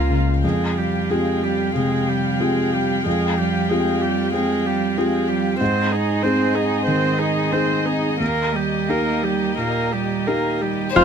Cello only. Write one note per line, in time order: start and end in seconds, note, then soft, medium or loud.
0.00 0.23 A#3 soft
0.44 0.79 G#3 soft
0.77 1.12 G3 soft
1.10 1.45 G#3 soft
1.43 1.75 G3 soft
1.76 2.10 G#3 soft
2.08 2.43 G3 soft
2.42 2.75 G#3 soft
2.74 3.06 G3 soft
3.06 3.40 G#3 soft
3.38 3.71 G3 soft
3.70 4.03 G#3 soft
4.02 4.33 G3 soft
4.34 4.67 G#3 soft
4.66 4.99 G3 soft
4.97 5.30 G#3 soft
5.28 5.60 G3 soft
5.60 5.93 C4 soft
5.92 6.24 D#4 soft
6.22 6.56 C4 soft
6.54 6.86 D#4 soft
6.87 7.20 C4 soft
7.19 7.53 D#4 soft
7.51 7.87 C4 soft
7.85 8.19 D#4 soft
8.20 8.56 A#3 soft
8.55 8.89 G3 soft
8.88 9.24 A#3 soft
9.22 9.57 G3 soft
9.58 9.95 A#3 soft
9.93 10.28 G3 soft
10.27 10.63 A#3 soft
10.62 10.95 G3 soft
10.95 11.04 G#3 medium